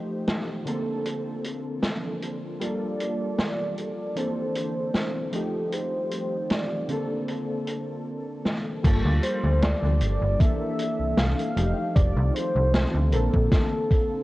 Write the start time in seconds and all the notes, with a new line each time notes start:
Already playing: F3 A3 D#4 G4 C5
0.27 snare, closed hi-hat
0.65 D3 A#3 C4 D4 A4, closed hi-hat
1.06 closed hi-hat
1.44 closed hi-hat
1.83 snare, closed hi-hat
2.22 closed hi-hat
2.59 G3 A#3 F4 G4 A4 D5, closed hi-hat
3.00 closed hi-hat
3.38 snare, closed hi-hat
3.77 closed hi-hat
4.15 D3 E3 A#3 C4 D4 E4 A4 C5, closed hi-hat
4.55 closed hi-hat
4.94 snare, closed hi-hat
5.32 D#3 F3 G3 A3 C4 D#4 F4 G4 A4, closed hi-hat
5.72 C5, closed hi-hat
6.11 closed hi-hat
6.50 D5, snare, closed hi-hat
6.88 D3 A#3 C4 A4, closed hi-hat
7.28 closed hi-hat
7.67 closed hi-hat
8.45 snare
8.83 G1 F3 G3 A#3 D4 F4 G4 A4, kick, closed hi-hat, crash
9.05 D2
9.23 C5, closed hi-hat
9.44 D2
9.62 D5, snare, closed hi-hat
9.83 D2
10.01 G1, closed hi-hat
10.22 G1
10.39 E3 A#3 C4 D4 A4 E5, kick, closed hi-hat
10.79 closed hi-hat
11.00 C2
11.18 C2 F5, snare, closed hi-hat
11.39 closed hi-hat
11.56 F1 D#3 F3 G3 A3 D#4 F4 G4, closed hi-hat
11.96 F1 D5, kick, closed hi-hat
12.17 C2
12.34 C5, closed hi-hat
12.56 C2
12.74 snare, closed hi-hat
12.94 D2
13.11 A#1 D3 A#3 C4 A4, closed hi-hat
13.34 A#1, kick
13.51 A4, kick, snare, closed hi-hat
13.91 kick, closed hi-hat